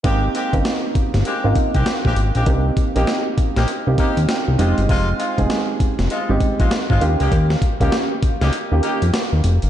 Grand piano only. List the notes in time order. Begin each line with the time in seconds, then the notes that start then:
0.04 A#3 C4 D#4 G4
0.53 A#3 C4 D#4 A#4
1.44 A#3 C4 D#4 F4
2.46 A#3 C4 D#4 G4
2.95 A#3 C4 D#4 G4
3.87 A#3 C4 D#4 G4
3.99 A#5
4.29 G5
4.59 G#3 C4 D#4 G4 D#5
5.38 G#3 C4 D#4 G#4
6.29 G#3 C4 D#4 G4
7.01 A#3 C#4 F4 G4
7.80 A#3 C#4 F4 G4
8.71 A#3 C#4 F4 G4